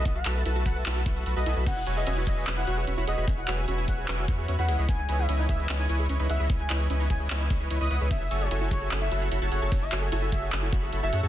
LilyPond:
<<
  \new Staff \with { instrumentName = "Soft synth lead" } { \time 4/4 \key e \major \tempo 4 = 149 dis''16 fis''16 r4 fis''16 r4. dis''8 r16 | fis''8 r16 dis''8 r16 dis''8 r16 fis''8 r8. dis''8 | r16 fis''16 r4 fis''16 r4. fis''8 r16 | gis''8. e''8 r16 e''8 r16 gis''8 r8. e''8 |
r16 gis''16 r4 gis''16 r4. dis'''8 r16 | e''8. cis''8 r16 cis''8 r16 e''8 r8. cis''8~ | cis''16 e''16 r4 e''16 r4. e''8 r16 | }
  \new Staff \with { instrumentName = "Supersaw synth" } { \time 4/4 \key e \major <fis' a' b' e'' a''>16 r16 <fis' a' b' e'' a''>8 <fis' a' b' e'' a''>8 <fis' a' b' e'' a''>8 <fis' a' b' e'' a''>8 <fis' a' b' e'' cis'''>8 <fis' a' b' e'' cis'''>16 <fis' a' b' e'' b''>16 <fis' a' b' e'' gis''>16 <fis' a' b' e'' b''>16 | <fis' b' cis'' e'' gis''>16 r16 <fis' b' cis'' e'' gis''>8 <fis' b' cis'' e'' gis''>8 <fis' b' cis'' e'' gis''>8 <fis' b' cis'' e'' gis''>8 <fis' b' cis'' e'' cis'''>8 <fis' b' cis'' e'' cis'''>16 <fis' b' cis'' e'' b''>16 <fis' b' cis'' e'' fis''>16 <fis' b' cis'' e'' b''>16 | <fis' b' cis'' e'' gis''>16 r16 <fis' b' cis'' e'' gis''>8 <fis' b' cis'' e'' gis''>8 <fis' b' cis'' e'' gis''>8 <fis' b' cis'' e'' gis''>8 <fis' b' cis'' e'' cis'''>8 <fis' b' cis'' e'' cis'''>16 <fis' b' cis'' e'' b''>16 <e' b' cis'' dis'' fis''>16 <e' b' cis'' dis'' b''>16 | <e' b' cis'' dis'' gis''>16 r16 <e' b' cis'' dis'' gis''>8 <e' b' cis'' dis'' gis''>8 <e' b' cis'' dis'' gis''>8 <e' b' cis'' dis'' gis''>8 <e' b' cis'' dis'' cis'''>8 <e' b' cis'' dis'' cis'''>16 <e' b' cis'' dis'' b''>16 <e' b' cis'' dis'' fis''>16 <e' b' cis'' dis'' b''>16 |
<e' b' cis'' dis'' gis''>16 r16 <e' b' cis'' dis'' gis''>8 <e' b' cis'' dis'' gis''>8 <e' b' cis'' dis'' gis''>8 <e' b' cis'' dis'' gis''>8 <e' b' cis'' dis'' cis'''>8 <e' b' cis'' dis'' cis'''>16 <e' b' cis'' dis'' b''>16 <e' b' cis'' dis'' fis''>16 <e' b' cis'' dis'' b''>16 | <fis' a' cis'' e'' gis''>16 r16 <fis' a' cis'' e'' gis''>8 <fis' a' cis'' e'' gis''>8 <fis' a' cis'' e'' gis''>8 <fis' a' cis'' e'' gis''>8 <fis' a' cis'' e'' b''>8 <fis' a' cis'' e'' b''>16 <fis' a' cis'' e'' a''>16 <fis' a' cis'' e'' fis''>16 <fis' a' cis'' e'' a''>16 | <fis' a' cis'' e'' gis''>16 r16 <fis' a' cis'' e'' gis''>8 <fis' a' cis'' e'' gis''>8 <fis' a' cis'' e'' gis''>8 <fis' a' cis'' e'' gis''>8 <fis' a' cis'' e'' b''>8 <fis' a' cis'' e'' b''>16 <fis' a' cis'' e'' a''>16 <fis' a' cis'' e'' fis''>16 <fis' a' cis'' e'' a''>16 | }
  \new Staff \with { instrumentName = "Synth arpeggio sound" } { \time 4/4 \key e \major e'16 fis'16 a'16 b'16 e'16 fis'16 b'16 b'16 e'16 fis'16 e'16 fis'16 fis'16 b'16 e'16 b'16 | cis'16 e'16 fis'16 gis'16 cis'16 e'16 gis'16 gis'16 cis'16 e'16 fis'16 gis'16 cis'16 e'16 gis'16 gis'16 | cis'16 e'16 fis'16 gis'16 cis'16 e'16 gis'16 gis'16 cis'16 e'16 fis'16 gis'16 cis'16 e'16 gis'16 gis'16 | cis'16 dis'16 e'16 gis'16 cis'16 dis'16 gis'16 gis'16 cis'16 dis'16 e'16 gis'16 cis'16 dis'16 gis'16 gis'16 |
cis'16 dis'16 e'16 gis'16 cis'16 dis'16 gis'16 gis'16 cis'16 dis'16 gis'16 gis'16 e'16 dis''16 b'16 gis'16 | cis'16 e'16 fis'16 gis'16 e'16 e'16 gis'16 gis'16 cis'16 e'16 fis'16 gis'16 e'16 e'16 gis'16 gis'16 | cis'16 e'16 fis'16 gis'16 e'16 e'16 gis'16 gis'16 cis'16 e'16 fis'16 gis'16 e'16 e'16 gis'16 gis'16 | }
  \new Staff \with { instrumentName = "Sub bass" } { \clef bass \time 4/4 \key e \major b,,8 b,,8 b,,8 b,,8 b,,8 b,,8 b,,16 b,,16 b,,16 b,,16 | e,,8 e,,8 e,,8 e,,8 e,,8 e,,8 e,,16 e,,16 e,,16 e,,16 | e,,8 e,,8 e,,8 e,,8 e,,8 e,8 e,16 e,16 cis,16 cis,16 | cis,8 cis,8 cis,8 cis,8 cis,8 cis,8 cis,16 cis,16 cis,16 cis,16 |
cis,8 cis,8 cis,8 cis,8 cis,8 cis,8 cis,16 cis,16 cis,16 cis,16 | fis,,8 fis,,8 fis,,8 fis,,8 fis,,8 fis,,8 fis,,16 fis,,16 fis,,16 fis,,16 | fis,,8 fis,,8 fis,,8 fis,,8 fis,,8 fis,,8 fis,,16 fis,,16 fis,16 fis,16 | }
  \new DrumStaff \with { instrumentName = "Drums" } \drummode { \time 4/4 <hh bd>8 <hc hh>8 hh8 <hh bd>8 <hc hh>8 <hh bd>8 hh8 hh8 | <cymc hh bd>8 hh8 hh8 <hh bd>8 <hc hh>8 hh8 hh8 hh8 | <hh bd>8 <hc hh>8 hh8 <hh bd>8 <hc hh>8 <hh bd>8 hh8 hh8 | <hh bd>8 hh8 hh8 <hh bd>8 <hc hh>8 hh8 hh8 hh8 |
<hh bd>8 <hc hh>8 hh8 <hh bd>8 <hc hh>8 <hh bd>8 hh8 hh8 | <hh bd cymr>8 hh8 hh8 <hh bd>8 <hc hh>8 hh8 hh8 hh8 | <hh bd cymr>8 <hc hh>8 hh8 <hh bd>8 <hc hh>8 <hh bd>8 hh8 hh8 | }
>>